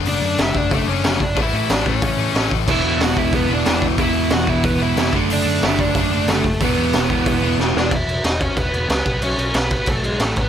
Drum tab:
CC |--------|--------|x-------|--------|
HH |o-o-o-o-|o-o-o-o-|--o-o-o-|o-o-o-o-|
SD |--o---o-|--o---o-|--o---o-|--o---o-|
BD |---oo--o|o--oo--o|o--oo--o|o--oo--o|

CC |--------|--------|xxxxxxxx|xxxxxxxx|
HH |o-o-o-o-|o-o-o---|--------|--------|
SD |--o---o-|--o---oo|--o---o-|--o---o-|
BD |---oo--o|o--oo---|o--oo--o|---oo--o|